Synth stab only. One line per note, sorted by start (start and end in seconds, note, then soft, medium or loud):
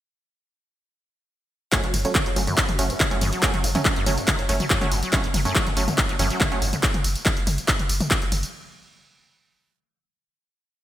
1.72 1.82 F#3 medium
1.72 1.82 A3 medium
1.72 1.82 C#4 loud
2.05 2.11 F#3 medium
2.05 2.11 A3 medium
2.05 2.11 C#4 medium
2.36 2.42 F#3 medium
2.36 2.42 A3 medium
2.36 2.42 C#4 medium
2.79 2.85 F#3 medium
2.79 2.85 A3 medium
2.79 2.85 C#4 loud
3.11 3.17 F#3 medium
3.11 3.17 A3 medium
3.11 3.17 C#4 loud
3.43 3.53 F#3 loud
3.43 3.53 A3 medium
3.43 3.53 C#4 loud
3.75 3.81 F#3 medium
3.75 3.81 A3 medium
3.75 3.81 C#4 medium
4.06 4.13 F#3 medium
4.06 4.13 A3 medium
4.06 4.13 C#4 medium
4.49 4.55 F#3 medium
4.49 4.55 A3 medium
4.49 4.55 C#4 loud
4.81 4.87 F#3 medium
4.81 4.87 A3 medium
4.81 4.87 C#4 loud
5.13 5.23 F#3 loud
5.13 5.23 A3 medium
5.13 5.23 C#4 loud
5.45 5.51 F#3 medium
5.45 5.51 A3 medium
5.45 5.51 C#4 medium
5.77 5.83 F#3 medium
5.77 5.83 A3 medium
5.77 5.83 C#4 medium
6.19 6.25 F#3 medium
6.19 6.25 A3 medium
6.19 6.25 C#4 loud
6.52 6.57 F#3 loud
6.52 6.57 A3 medium
6.52 6.57 C#4 loud